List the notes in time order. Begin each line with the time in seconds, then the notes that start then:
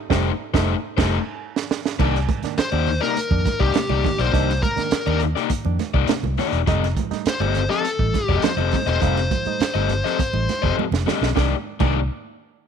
0.10 F1 G3 A3 D#4 G4 C5, kick, snare
0.54 F1 G3 A3 D#4 G4 C5, kick, snare
0.97 F1 G3 A3 D#4 G4 C5, kick, snare, crash
1.56 snare
1.71 snare
1.85 snare
1.99 C2 D#3 A#3 D4 D#4 G4 D5, kick, crash, muted conga
2.15 snare
2.29 C3, kick, closed hi-hat, high conga
2.43 D#3 A#3 D4, muted fingered electric bass stroke, snare, closed hi-hat
2.58 C5, muted fingered electric bass stroke, snare, closed hi-hat, muted conga
2.72 D#2 D#3 A#3 D4 D#4 G4 D5, muted conga
2.86 open hi-hat, low conga
3.01 C3 A#3 D#4 G4 A#4 D5, snare
3.16 closed hi-hat, muted conga
3.31 F2 D#3 A#3 D4, kick, muted conga
3.45 kick, snare, closed hi-hat, high conga
3.60 C2 C3 A#3 D#4 G4 D5, kick
3.74 C3, snare, closed hi-hat, high conga
3.89 C2 A#3 D#4 G4 D5, high conga, low conga
4.04 D#3 A#3 D4, kick, snare, open hi-hat, low conga
4.19 B1 A#3 D4 D#4 G4 C5 D5, closed hi-hat
4.33 C2 D#3 A#3 D4 D#4 G4 D#5, kick, closed hi-hat, muted conga
4.50 snare, muted conga
4.62 C3 A#4, kick, closed hi-hat, high conga
4.76 D#3 A#3 D4, muted fingered electric bass stroke, snare, closed hi-hat
4.91 muted fingered electric bass stroke, snare, closed hi-hat
5.06 D#2 D#3 A#3 D4 D#4 G4 D5, muted conga
5.20 closed hi-hat, low conga
5.35 C3 A#3 D#4 G4 D5, snare
5.50 kick, closed hi-hat, muted conga
5.65 F2 D#3 A#3 D4, muted conga
5.79 snare, closed hi-hat, high conga
5.94 C2 C3 A#3 D#4 G4 D5, kick
6.07 C3, muted fingered electric bass stroke, snare, closed hi-hat, muted conga, high conga
6.23 C2, muted conga, high conga, low conga
6.37 D#3 A#3 D4 D#4 G4 D5, snare, open hi-hat, low conga
6.52 E1 A#3 D4, closed hi-hat
6.67 F1 G3 A3 C4 D#4 G4 A4 D#5, kick, closed hi-hat
6.83 snare, muted conga
6.97 F3, kick, closed hi-hat, high conga
7.11 G3 A3 D#4, muted fingered electric bass stroke, snare, closed hi-hat
7.26 C5, muted fingered electric bass stroke, snare, closed hi-hat, muted conga
7.40 G1 G3 A3 C4 D#4 G4 A4 D#5, muted conga
7.55 closed hi-hat, low conga
7.69 F3 C4 G4 A4 D#5, snare
7.85 closed hi-hat
7.99 A1 G3 A3 D#4, kick
8.14 kick, snare, closed hi-hat, high conga
8.25 F1 F3 G4 A4 D#5, kick
8.30 C4 G4
8.42 F3 C5, muted fingered electric bass stroke, snare, closed hi-hat, muted conga, high conga
8.57 F1 C4 G4 A4 D#5, high conga, low conga
8.71 G3 A3 D#4, kick, snare, open hi-hat, low conga
8.86 E1 A3 C4 D#4 G4 A4 C5 D#5, closed hi-hat
9.01 F1 G3 A3 C4 D#4 G4 A4 F5, kick, closed hi-hat, muted conga
9.17 snare, muted conga
9.31 F3, kick, closed hi-hat, high conga
9.45 G3 A3 D#4, muted fingered electric bass stroke, closed hi-hat
9.60 muted fingered electric bass stroke, snare, closed hi-hat, muted conga
9.74 G1 G3 A3 C4 D#4 G4 A4 D#5, muted conga
9.89 closed hi-hat, low conga
10.04 F3 C4 G4 A4 D#5, snare
10.19 kick, closed hi-hat, muted conga
10.33 A1 G3 A3 D#4, muted conga
10.49 snare, closed hi-hat, high conga
10.62 F1 F3 C4 G4 A4 D#5, kick
10.77 F3, muted conga, high conga
10.91 F1, snare, muted conga, high conga, low conga
11.06 G3 A3 C4 D#4 G4 A4 D#5, snare, low conga
11.21 B1 A3 D#4, snare
11.35 C2 D#3 A#3 D4 D#4 G4 D5, kick, snare, high conga
11.80 C2 D#3 A#3 D4 D#4 G4 D5, kick, crash, high conga